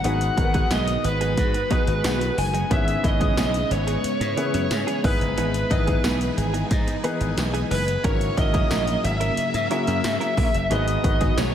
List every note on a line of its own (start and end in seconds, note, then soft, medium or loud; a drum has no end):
0.04 0.29 G#1 loud
0.04 1.00 G#2 medium
0.04 2.68 D#3 medium
0.04 0.19 F#3 medium
0.04 8.00 G#3 medium
0.04 0.34 B3 medium
0.04 8.00 B3 medium
0.04 0.19 B3 medium
0.04 0.34 D#4 medium
0.04 0.19 D#4 medium
0.04 0.34 F#4 medium
0.04 2.68 F#4 medium
0.04 0.34 G#4 medium
0.04 0.19 G#4 loud
0.04 0.34 B4 medium
0.04 0.73 F#5 loud
0.04 closed hi-hat medium
0.21 muted clean electric guitar stroke soft
0.21 closed hi-hat medium
0.37 0.62 G#1 loud
0.37 1.56 B3 medium
0.37 1.56 D#4 medium
0.37 1.56 F#4 medium
0.37 1.56 G#4 medium
0.37 0.44 A#4 medium
0.37 muted clean electric guitar stroke soft
0.37 kick loud
0.37 closed hi-hat medium
0.44 1.60 B4 medium
0.54 0.66 F#3 medium
0.54 0.66 B3 medium
0.54 0.66 D#4 medium
0.54 0.66 G#4 medium
0.54 kick medium
0.54 closed hi-hat medium
0.71 0.96 B1 medium
0.71 0.85 F#3 medium
0.71 0.86 B3 medium
0.71 0.86 D#4 medium
0.71 0.86 G#4 medium
0.71 1.02 D#5 loud
0.71 snare loud
0.71 closed hi-hat medium
0.71 tambourine medium
0.87 muted clean electric guitar stroke soft
0.87 closed hi-hat medium
1.04 1.39 G#1 medium
1.04 2.42 B4 medium
1.04 muted clean electric guitar stroke soft
1.04 closed hi-hat medium
1.21 1.33 F#3 medium
1.21 1.33 B3 medium
1.21 1.33 D#4 medium
1.21 1.32 G#4 medium
1.21 closed hi-hat medium
1.37 1.62 G#2 loud
1.37 1.52 G#3 loud
1.37 1.52 F#4 medium
1.37 1.52 B4 loud
1.37 kick medium
1.37 closed hi-hat loud
1.54 muted clean electric guitar stroke medium
1.54 closed hi-hat medium
1.70 1.85 F#3 medium
1.70 2.60 B3 medium
1.70 1.86 B3 medium
1.70 2.60 D#4 medium
1.70 1.86 D#4 medium
1.70 2.60 F#4 medium
1.70 2.60 G#4 medium
1.70 1.86 G#4 medium
1.70 2.60 B4 medium
1.70 kick loud
1.70 closed hi-hat medium
1.87 2.00 G#1 medium
1.87 2.35 G#3 loud
1.87 2.35 F#4 loud
1.87 2.35 B4 loud
1.87 muted clean electric guitar stroke soft
1.87 closed hi-hat soft
2.04 2.29 B1 loud
2.04 2.19 F#3 medium
2.04 2.19 B3 medium
2.04 2.19 D#4 medium
2.04 2.19 G#4 medium
2.04 snare loud
2.04 closed hi-hat loud
2.04 tambourine medium
2.20 muted clean electric guitar stroke medium
2.20 closed hi-hat medium
2.37 2.62 F#1 medium
2.37 2.72 G#5 loud
2.37 muted clean electric guitar stroke soft
2.37 open hi-hat medium
2.54 2.66 F#3 medium
2.54 2.66 B3 medium
2.54 2.66 D#4 medium
2.54 2.65 G#4 medium
2.54 closed hi-hat medium
2.70 2.96 G#1 loud
2.70 3.67 G#2 medium
2.70 5.02 C#3 medium
2.70 2.85 E3 medium
2.70 3.00 B3 medium
2.70 2.86 B3 medium
2.70 3.00 C#4 medium
2.70 2.86 C#4 medium
2.70 3.00 E4 medium
2.70 5.02 E4 medium
2.70 3.01 G#4 medium
2.70 2.86 G#4 medium
2.70 3.01 B4 medium
2.70 3.05 E5 loud
2.70 kick loud
2.70 closed hi-hat medium
2.87 muted clean electric guitar stroke soft
2.87 closed hi-hat medium
3.03 3.29 G#1 loud
3.03 4.22 B3 medium
3.03 4.23 C#4 medium
3.03 4.23 E4 medium
3.03 4.23 G#4 medium
3.03 4.23 B4 medium
3.03 3.72 D#5 loud
3.03 muted clean electric guitar stroke soft
3.03 kick medium
3.03 closed hi-hat medium
3.20 3.33 E3 medium
3.20 3.32 B3 medium
3.20 3.32 C#4 medium
3.20 3.32 G#4 medium
3.20 kick medium
3.20 closed hi-hat medium
3.37 3.62 B1 loud
3.37 3.52 E3 medium
3.37 3.52 B3 medium
3.37 3.52 C#4 medium
3.37 3.53 G#4 medium
3.37 snare loud
3.37 closed hi-hat loud
3.37 tambourine medium
3.54 closed hi-hat medium
3.70 3.96 G#1 medium
3.70 5.01 C#5 loud
3.70 muted clean electric guitar stroke soft
3.70 closed hi-hat medium
3.87 3.99 E3 medium
3.87 3.99 B3 medium
3.87 3.99 C#4 medium
3.87 3.99 G#4 medium
3.87 closed hi-hat medium
4.04 muted slap bass stroke soft
4.04 closed hi-hat loud
4.21 4.33 G#2 loud
4.21 muted clean electric guitar stroke soft
4.21 closed hi-hat medium
4.37 4.52 E3 medium
4.37 5.02 B3 medium
4.37 4.52 B3 medium
4.37 5.04 C#4 medium
4.37 4.52 C#4 medium
4.37 5.03 E4 medium
4.37 5.03 G#4 medium
4.37 4.53 G#4 medium
4.37 5.03 B4 medium
4.37 closed hi-hat medium
4.54 4.67 F#2 loud
4.54 muted clean electric guitar stroke soft
4.54 closed hi-hat medium
4.70 4.83 G#2 loud
4.70 muted clean electric guitar stroke soft
4.70 snare loud
4.70 closed hi-hat loud
4.70 tambourine medium
4.87 5.03 E3 medium
4.87 5.02 B3 medium
4.87 5.02 C#4 medium
4.87 5.02 G#4 medium
4.87 closed hi-hat medium
5.04 5.17 G#1 loud
5.04 6.00 G#2 medium
5.04 5.16 E3 medium
5.04 8.01 E3 medium
5.04 5.63 B3 medium
5.04 5.16 B3 medium
5.04 5.63 D#4 medium
5.04 5.16 D#4 medium
5.04 5.64 E4 medium
5.04 10.67 G#4 medium
5.04 5.64 G#4 medium
5.04 5.16 G#4 medium
5.04 5.64 B4 medium
5.04 6.01 B4 medium
5.04 kick loud
5.04 open hi-hat medium
5.21 5.33 F#1 medium
5.21 closed hi-hat medium
5.37 5.62 G#1 loud
5.37 5.52 E3 medium
5.37 5.52 B3 medium
5.37 5.53 D#4 medium
5.37 5.53 G#4 loud
5.37 closed hi-hat medium
5.54 closed hi-hat medium
5.70 5.96 G#1 loud
5.70 6.89 B3 medium
5.70 6.89 D#4 medium
5.70 6.89 E4 medium
5.70 6.90 G#4 medium
5.70 6.90 B4 medium
5.70 5.86 D#5 loud
5.70 muted clean electric guitar stroke soft
5.70 kick medium
5.70 closed hi-hat medium
5.87 5.99 E3 medium
5.87 5.99 B3 medium
5.87 5.99 D#4 medium
5.87 5.99 G#4 medium
5.87 kick medium
5.87 closed hi-hat medium
6.04 6.29 B1 loud
6.04 6.19 E3 medium
6.04 6.19 B3 medium
6.04 6.19 D#4 loud
6.04 6.19 G#4 loud
6.04 6.35 B4 loud
6.04 snare loud
6.04 closed hi-hat medium
6.04 tambourine medium
6.21 closed hi-hat medium
6.37 6.62 G#1 loud
6.37 6.71 G#4 medium
6.37 muted clean electric guitar stroke medium
6.37 closed hi-hat medium
6.54 6.66 E3 medium
6.54 6.66 B3 medium
6.54 6.66 D#4 medium
6.54 6.66 G#4 medium
6.54 closed hi-hat medium
6.71 6.96 G#2 loud
6.71 7.54 D#4 medium
6.71 kick medium
6.71 closed hi-hat loud
6.87 muted clean electric guitar stroke medium
6.87 closed hi-hat medium
7.04 7.19 E3 medium
7.04 7.93 E3 medium
7.04 7.93 B3 medium
7.04 7.19 B3 medium
7.04 7.93 D#4 medium
7.04 7.19 D#4 loud
7.04 7.93 G#4 medium
7.04 7.19 G#4 medium
7.04 7.93 B4 medium
7.04 closed hi-hat medium
7.21 7.33 G#1 loud
7.21 closed hi-hat soft
7.37 7.62 B1 loud
7.37 muted clean electric guitar stroke soft
7.37 snare loud
7.37 closed hi-hat medium
7.37 tambourine medium
7.54 7.69 E3 medium
7.54 7.69 B3 medium
7.54 7.69 D#4 medium
7.54 7.69 G#4 medium
7.54 closed hi-hat medium
7.70 7.96 F#1 medium
7.70 7.82 E3 medium
7.70 7.82 B3 medium
7.70 7.83 D#4 medium
7.70 7.83 G#4 medium
7.70 8.02 B4 medium
7.70 open hi-hat medium
7.87 muted clean electric guitar stroke soft
7.87 closed hi-hat medium
8.04 8.29 G#1 loud
8.04 9.00 G#2 medium
8.04 10.68 C#3 medium
8.04 8.19 F#3 loud
8.04 10.68 F#3 medium
8.04 8.34 A#3 medium
8.04 10.68 A#3 medium
8.04 8.34 C#4 medium
8.04 8.19 C#4 medium
8.04 8.34 E4 medium
8.04 8.19 E4 loud
8.04 8.34 F#4 medium
8.04 8.34 A#4 medium
8.04 8.19 A#4 loud
8.04 8.36 C#5 loud
8.04 kick loud
8.04 closed hi-hat medium
8.21 closed hi-hat medium
8.37 8.62 G#1 loud
8.37 9.56 A#3 medium
8.37 9.56 C#4 medium
8.37 9.56 E4 medium
8.37 9.57 F#4 medium
8.37 9.57 A#4 medium
8.37 9.05 D#5 loud
8.37 muted clean electric guitar stroke soft
8.37 kick loud
8.37 closed hi-hat medium
8.54 8.66 F#3 medium
8.54 8.66 C#4 medium
8.54 8.66 E4 medium
8.54 8.65 A#4 medium
8.54 kick medium
8.54 closed hi-hat medium
8.70 8.96 A#1 loud
8.70 8.85 F#3 medium
8.70 8.86 C#4 medium
8.70 8.86 E4 medium
8.70 8.86 A#4 medium
8.70 snare loud
8.70 closed hi-hat medium
8.70 tambourine medium
8.87 muted clean electric guitar stroke medium
8.87 closed hi-hat medium
9.04 9.29 G#1 medium
9.04 9.67 E5 loud
9.04 muted clean electric guitar stroke soft
9.04 closed hi-hat medium
9.20 9.33 F#3 medium
9.20 9.33 C#4 medium
9.20 9.32 E4 medium
9.20 9.32 A#4 medium
9.20 closed hi-hat medium
9.37 muted slap bass stroke soft
9.37 closed hi-hat loud
9.54 9.67 G#2 loud
9.54 muted clean electric guitar stroke soft
9.54 closed hi-hat medium
9.70 9.85 F#3 medium
9.70 10.60 A#3 medium
9.70 10.60 C#4 medium
9.70 9.86 C#4 loud
9.70 10.60 E4 medium
9.70 9.86 E4 loud
9.70 10.60 F#4 medium
9.70 9.78 G#4 medium
9.70 9.86 A#4 loud
9.70 10.72 E5 loud
9.70 closed hi-hat medium
9.78 10.63 A#4 medium
9.87 10.00 F#2 medium
9.87 muted clean electric guitar stroke soft
9.87 closed hi-hat soft
10.04 10.17 G#2 loud
10.04 muted clean electric guitar stroke soft
10.04 snare loud
10.04 closed hi-hat loud
10.04 tambourine medium
10.21 10.36 F#3 medium
10.21 10.36 C#4 medium
10.21 10.36 E4 medium
10.21 10.35 A#4 medium
10.21 closed hi-hat medium
10.37 10.50 A#1 medium
10.37 10.49 F#3 medium
10.37 10.49 C#4 medium
10.37 10.49 E4 medium
10.37 10.49 A#4 medium
10.37 kick loud
10.37 open hi-hat medium
10.54 10.67 F#1 medium
10.54 muted clean electric guitar stroke soft
10.54 closed hi-hat medium
10.70 10.96 G#1 loud
10.70 11.55 G#2 medium
10.70 11.55 D#3 medium
10.70 10.85 F#3 loud
10.70 11.55 G#3 medium
10.70 11.00 B3 medium
10.70 10.86 B3 loud
10.70 11.55 B3 medium
10.70 11.00 D#4 medium
10.70 10.86 D#4 loud
10.70 11.00 F#4 medium
10.70 11.55 F#4 medium
10.70 11.01 G#4 medium
10.70 10.86 G#4 loud
10.70 11.01 B4 medium
10.70 11.34 D#5 loud
10.70 closed hi-hat medium
10.88 closed hi-hat medium
11.04 11.29 G#1 loud
11.04 11.55 B3 medium
11.04 11.55 D#4 medium
11.04 11.55 F#4 medium
11.04 11.55 G#4 medium
11.04 11.55 B4 medium
11.04 muted clean electric guitar stroke soft
11.04 kick loud
11.04 closed hi-hat medium
11.21 11.33 F#3 medium
11.21 11.33 B3 medium
11.21 11.33 D#4 medium
11.21 11.32 G#4 medium
11.21 kick medium
11.21 closed hi-hat medium
11.37 11.55 B1 loud
11.37 11.52 F#3 medium
11.37 11.52 B3 medium
11.37 11.53 D#4 medium
11.37 11.53 G#4 loud
11.37 11.55 C#5 medium
11.37 snare loud
11.37 closed hi-hat loud
11.37 tambourine medium